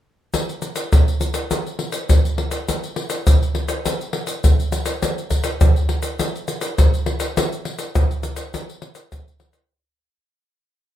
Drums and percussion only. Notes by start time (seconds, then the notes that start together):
0.34 pandeiro, shaker, surdo
0.49 pandeiro, shaker
0.62 pandeiro, shaker
0.76 pandeiro, shaker
0.92 pandeiro, shaker, surdo
1.08 pandeiro, shaker
1.21 pandeiro, shaker
1.34 pandeiro, shaker
1.51 pandeiro, shaker, surdo
1.66 pandeiro, shaker
1.79 pandeiro
1.92 pandeiro, shaker
2.09 pandeiro, shaker, surdo
2.25 pandeiro, shaker
2.38 pandeiro
2.51 pandeiro, shaker
2.68 pandeiro, shaker, surdo
2.84 pandeiro, shaker
2.96 pandeiro
3.10 pandeiro, shaker
3.27 pandeiro, shaker, surdo
3.43 pandeiro, shaker
3.55 pandeiro
3.68 pandeiro, shaker
3.86 pandeiro, shaker, surdo
4.01 pandeiro, shaker
4.13 pandeiro
4.27 pandeiro, shaker
4.44 pandeiro, shaker, surdo
4.60 pandeiro, shaker
4.72 pandeiro, shaker
4.86 pandeiro, shaker
5.03 pandeiro, shaker, surdo
5.18 pandeiro, shaker
5.30 pandeiro, shaker, surdo
5.44 pandeiro, shaker
5.61 pandeiro, shaker, surdo
5.76 pandeiro, shaker
5.89 pandeiro
6.03 pandeiro, shaker
6.19 pandeiro, shaker, surdo
6.36 pandeiro, shaker
6.48 pandeiro, shaker
6.61 pandeiro, shaker
6.78 pandeiro, shaker, surdo
6.94 pandeiro, shaker
7.06 pandeiro
7.20 pandeiro, shaker
7.37 pandeiro, shaker, surdo
7.52 pandeiro, shaker
7.65 pandeiro
7.79 pandeiro, shaker
7.95 pandeiro, shaker, surdo
8.11 pandeiro, shaker
8.23 pandeiro, shaker
8.36 pandeiro, shaker
8.54 pandeiro, shaker, surdo
8.69 pandeiro, shaker
8.82 pandeiro
8.95 pandeiro, shaker
9.12 pandeiro, shaker, surdo
9.28 pandeiro, shaker
9.40 pandeiro
9.53 pandeiro, shaker